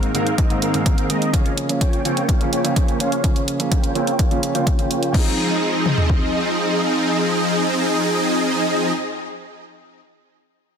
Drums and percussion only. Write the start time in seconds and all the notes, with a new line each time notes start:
0.03 closed hi-hat
0.15 closed hi-hat
0.27 closed hi-hat
0.38 kick, closed hi-hat
0.50 closed hi-hat
0.62 closed hi-hat
0.74 closed hi-hat
0.86 kick, closed hi-hat
0.98 closed hi-hat
1.10 closed hi-hat
1.22 closed hi-hat
1.33 kick, closed hi-hat
1.46 closed hi-hat
1.57 closed hi-hat
1.69 closed hi-hat
1.81 kick, closed hi-hat
1.93 closed hi-hat
2.05 closed hi-hat
2.17 closed hi-hat
2.29 kick, closed hi-hat
2.41 closed hi-hat
2.53 closed hi-hat
2.65 closed hi-hat
2.76 kick, closed hi-hat
2.88 closed hi-hat
3.00 closed hi-hat
3.12 closed hi-hat
3.24 kick, closed hi-hat
3.36 closed hi-hat
3.48 closed hi-hat
3.60 closed hi-hat
3.72 kick, closed hi-hat
3.84 closed hi-hat
3.95 closed hi-hat
4.07 closed hi-hat
4.19 kick, closed hi-hat
4.31 closed hi-hat
4.43 closed hi-hat
4.55 closed hi-hat
4.67 kick, closed hi-hat
4.79 closed hi-hat
4.91 closed hi-hat
5.03 closed hi-hat
5.14 kick, crash
5.86 mid tom
5.98 floor tom
6.10 kick